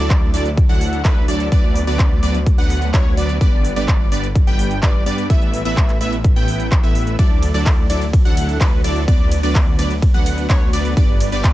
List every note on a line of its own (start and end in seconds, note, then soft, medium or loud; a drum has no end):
0.00 0.31 D2 loud
0.00 0.31 F#3 medium
0.00 0.31 D4 medium
0.00 0.31 E4 medium
0.00 0.31 A4 medium
0.00 0.31 D5 medium
0.10 kick loud
0.10 clap loud
0.10 closed hi-hat medium
0.34 0.67 D2 loud
0.34 0.49 F#3 medium
0.34 0.49 D4 medium
0.34 0.49 E4 medium
0.34 0.49 A4 medium
0.34 0.49 D5 medium
0.34 open hi-hat loud
0.46 closed hi-hat soft
0.57 kick loud
0.57 closed hi-hat medium
0.69 1.02 D2 loud
0.69 1.02 F#3 medium
0.69 1.02 D4 medium
0.69 1.02 E4 medium
0.69 1.02 A4 medium
0.69 1.02 F#5 loud
0.69 closed hi-hat soft
0.81 open hi-hat loud
0.93 closed hi-hat medium
1.05 1.26 D2 loud
1.05 1.25 F#3 medium
1.05 1.25 D4 medium
1.05 1.25 E4 medium
1.05 1.25 A4 medium
1.05 1.25 B4 medium
1.05 1.25 B4 loud
1.05 kick loud
1.05 clap loud
1.05 closed hi-hat medium
1.28 1.50 D2 loud
1.28 1.48 F#3 medium
1.28 1.48 D4 medium
1.28 1.48 E4 medium
1.28 1.48 A4 medium
1.28 1.48 D5 medium
1.28 1.48 D5 loud
1.28 open hi-hat loud
1.40 closed hi-hat medium
1.52 1.85 D2 medium
1.52 1.85 F#3 loud
1.52 1.85 B3 medium
1.52 1.85 D4 medium
1.52 1.85 B4 medium
1.52 1.85 D5 loud
1.52 kick loud
1.52 closed hi-hat medium
1.76 open hi-hat loud
1.87 2.20 D2 loud
1.87 2.20 F#3 medium
1.87 2.20 B3 medium
1.87 2.20 D4 medium
1.87 2.20 B4 medium
1.87 2.20 D5 medium
1.87 closed hi-hat medium
1.99 kick loud
1.99 clap loud
1.99 closed hi-hat medium
2.23 2.56 D2 loud
2.23 2.38 F#3 medium
2.23 2.38 B3 medium
2.23 2.38 D4 medium
2.23 2.38 B4 medium
2.23 2.38 D5 medium
2.23 open hi-hat loud
2.35 closed hi-hat medium
2.46 kick loud
2.46 closed hi-hat medium
2.58 2.91 D2 medium
2.58 2.91 F#3 loud
2.58 2.91 B3 medium
2.58 2.91 D4 medium
2.58 2.91 B4 medium
2.58 2.91 F#5 loud
2.58 closed hi-hat soft
2.70 open hi-hat loud
2.82 closed hi-hat medium
2.94 3.15 D2 loud
2.94 3.14 F#3 medium
2.94 3.14 B3 medium
2.94 3.14 D4 medium
2.94 3.14 B4 medium
2.94 3.14 C#5 loud
2.94 3.14 C#5 medium
2.94 kick loud
2.94 clap loud
2.94 closed hi-hat medium
3.17 3.39 D2 loud
3.17 3.37 F#3 medium
3.17 3.37 B3 medium
3.17 3.37 D4 medium
3.17 3.37 B4 medium
3.17 3.37 D5 loud
3.17 open hi-hat loud
3.29 closed hi-hat medium
3.41 3.74 G1 medium
3.41 3.74 G3 loud
3.41 3.74 B3 medium
3.41 3.74 D4 medium
3.41 3.74 B4 medium
3.41 3.74 D5 loud
3.41 kick loud
3.41 closed hi-hat medium
3.65 open hi-hat loud
3.76 4.09 G1 loud
3.76 4.09 G3 medium
3.76 4.09 B3 medium
3.76 4.09 D4 medium
3.76 4.09 B4 medium
3.76 4.09 D5 medium
3.76 closed hi-hat medium
3.88 kick loud
3.88 clap loud
3.88 closed hi-hat medium
4.12 4.45 G1 loud
4.12 4.27 G3 medium
4.12 4.27 B3 medium
4.12 4.27 D4 medium
4.12 4.27 B4 medium
4.12 4.27 D5 medium
4.12 open hi-hat loud
4.24 closed hi-hat medium
4.35 kick loud
4.35 closed hi-hat medium
4.47 4.80 G1 loud
4.47 4.80 G3 loud
4.47 4.80 B3 medium
4.47 4.80 D4 medium
4.47 4.80 B4 medium
4.47 4.80 G5 loud
4.47 closed hi-hat soft
4.59 open hi-hat loud
4.71 closed hi-hat medium
4.83 5.04 G1 loud
4.83 5.03 G3 medium
4.83 5.03 B3 medium
4.83 5.03 D4 medium
4.83 5.03 B4 medium
4.83 5.03 D5 medium
4.83 kick loud
4.83 clap loud
4.83 closed hi-hat medium
5.06 5.28 G2 loud
5.06 5.26 G3 medium
5.06 5.26 B3 medium
5.06 5.26 D4 medium
5.06 5.26 B4 medium
5.06 5.26 D5 loud
5.06 5.26 D5 medium
5.06 open hi-hat loud
5.18 closed hi-hat medium
5.30 5.63 A1 loud
5.30 5.63 A3 loud
5.30 5.63 B3 medium
5.30 5.63 E4 medium
5.30 5.63 B4 medium
5.30 5.63 E5 loud
5.30 kick loud
5.30 closed hi-hat medium
5.42 closed hi-hat soft
5.54 open hi-hat loud
5.65 5.98 A1 loud
5.65 5.98 A3 medium
5.65 5.98 B3 medium
5.65 5.98 E4 medium
5.65 5.98 B4 medium
5.65 5.98 E5 medium
5.65 closed hi-hat medium
5.77 kick loud
5.77 clap loud
5.77 closed hi-hat medium
5.89 clap soft
5.89 closed hi-hat soft
6.01 6.34 A1 loud
6.01 6.16 A3 medium
6.01 6.16 B3 medium
6.01 6.16 E4 medium
6.01 6.16 B4 medium
6.01 6.16 E5 medium
6.01 open hi-hat loud
6.13 closed hi-hat medium
6.24 kick loud
6.24 closed hi-hat medium
6.36 6.81 A1 loud
6.36 6.69 A3 loud
6.36 6.69 B3 medium
6.36 6.69 E4 medium
6.36 6.69 B4 medium
6.36 6.69 G5 loud
6.36 closed hi-hat soft
6.48 open hi-hat loud
6.60 closed hi-hat medium
6.72 kick loud
6.72 clap loud
6.72 closed hi-hat medium
6.83 7.17 A1 loud
6.83 7.16 A3 medium
6.83 7.16 B3 medium
6.83 7.16 E4 medium
6.83 7.16 B4 medium
6.83 7.16 E5 medium
6.83 closed hi-hat soft
6.95 open hi-hat loud
7.07 closed hi-hat medium
7.19 7.52 D2 medium
7.19 7.51 F#3 medium
7.19 7.51 D4 medium
7.19 7.51 E4 medium
7.19 7.51 A4 medium
7.19 7.51 D5 loud
7.19 kick loud
7.19 closed hi-hat medium
7.19 ride medium
7.43 open hi-hat loud
7.43 ride medium
7.54 7.87 D2 loud
7.54 7.87 F#3 medium
7.54 7.87 D4 medium
7.54 7.87 E4 medium
7.54 7.87 A4 medium
7.54 7.87 D5 medium
7.54 closed hi-hat medium
7.66 kick loud
7.66 clap loud
7.66 closed hi-hat medium
7.66 ride medium
7.90 8.23 D2 loud
7.90 8.05 F#3 medium
7.90 8.05 D4 medium
7.90 8.05 E4 medium
7.90 8.05 A4 medium
7.90 8.05 D5 medium
7.90 open hi-hat loud
7.90 ride medium
8.02 closed hi-hat medium
8.13 kick loud
8.13 closed hi-hat medium
8.13 ride medium
8.25 8.58 D2 loud
8.25 8.58 F#3 loud
8.25 8.58 D4 medium
8.25 8.58 E4 medium
8.25 8.58 A4 medium
8.25 8.58 F#5 loud
8.25 closed hi-hat soft
8.37 open hi-hat loud
8.37 ride medium
8.49 closed hi-hat medium
8.61 8.82 D2 loud
8.61 8.81 D4 medium
8.61 8.81 E4 medium
8.61 8.81 A4 medium
8.61 8.81 B4 medium
8.61 8.81 B4 loud
8.61 kick loud
8.61 clap loud
8.61 closed hi-hat medium
8.61 ride medium
8.84 9.06 D2 medium
8.84 9.04 F#3 medium
8.84 9.04 D4 medium
8.84 9.04 E4 medium
8.84 9.04 A4 medium
8.84 9.04 D5 medium
8.84 open hi-hat loud
8.84 ride medium
8.96 closed hi-hat medium
9.08 9.41 D2 medium
9.08 9.40 F#3 medium
9.08 9.40 B3 medium
9.08 9.40 D4 medium
9.08 9.40 B4 medium
9.08 9.40 D5 loud
9.08 kick loud
9.08 closed hi-hat medium
9.08 ride medium
9.32 open hi-hat loud
9.32 ride medium
9.43 9.76 D2 loud
9.43 9.76 F#3 medium
9.43 9.76 B3 medium
9.43 9.76 D4 medium
9.43 9.76 B4 medium
9.43 9.76 D5 medium
9.43 closed hi-hat medium
9.55 kick loud
9.55 clap loud
9.55 closed hi-hat medium
9.55 ride medium
9.79 10.12 D2 loud
9.79 9.94 F#3 medium
9.79 9.94 B3 medium
9.79 9.94 D4 medium
9.79 9.94 B4 medium
9.79 9.94 D5 medium
9.79 open hi-hat loud
9.79 ride medium
9.91 closed hi-hat medium
10.02 kick loud
10.02 closed hi-hat medium
10.02 ride medium
10.14 10.47 D2 loud
10.14 10.47 F#3 medium
10.14 10.47 B3 medium
10.14 10.47 D4 medium
10.14 10.47 B4 medium
10.14 10.47 F#5 loud
10.14 closed hi-hat soft
10.26 open hi-hat loud
10.26 ride medium
10.38 closed hi-hat medium
10.50 10.71 D2 loud
10.50 10.70 F#3 medium
10.50 10.70 B3 medium
10.50 10.70 B4 medium
10.50 10.70 C#5 medium
10.50 10.70 C#5 loud
10.50 kick loud
10.50 clap loud
10.50 closed hi-hat medium
10.50 ride medium
10.73 10.94 D2 loud
10.73 10.93 F#3 medium
10.73 10.93 B3 medium
10.73 10.93 D4 medium
10.73 10.93 B4 medium
10.73 10.93 D5 medium
10.73 open hi-hat loud
10.73 ride medium
10.85 closed hi-hat medium
10.97 11.30 G1 medium
10.97 11.29 G3 medium
10.97 11.29 B3 medium
10.97 11.29 D4 medium
10.97 11.29 B4 medium
10.97 11.29 D5 loud
10.97 kick loud
10.97 closed hi-hat medium
10.97 ride medium
11.20 open hi-hat loud
11.20 ride medium
11.32 11.53 G1 medium
11.32 11.53 G3 medium
11.32 11.53 B3 medium
11.32 11.53 D4 medium
11.32 11.53 B4 medium
11.32 11.53 D5 loud
11.32 11.53 D5 medium
11.32 closed hi-hat medium
11.44 kick loud
11.44 clap loud
11.44 closed hi-hat medium
11.44 ride medium